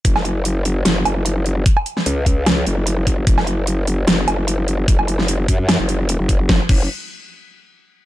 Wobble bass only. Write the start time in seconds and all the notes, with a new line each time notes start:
0.05 F#1
0.85 F#1
1.05 F#1
2.06 C#2
2.67 F#1
3.27 F#1
4.08 F#1
4.28 F#1
4.88 F#1
5.48 F#2
5.79 F#1
6.20 F#1
6.49 F#1
6.69 F#1